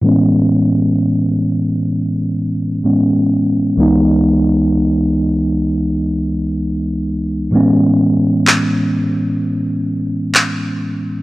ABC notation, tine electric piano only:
X:1
M:4/4
L:1/8
Q:"Swing 16ths" 1/4=64
K:Alyd
V:1 name="Tine electric piano" clef=bass
[A,,E,G,B,C]6 [A,,E,G,B,C]2 | [C,,E,G,B,D]8 | [A,,E,G,B,C]8 |]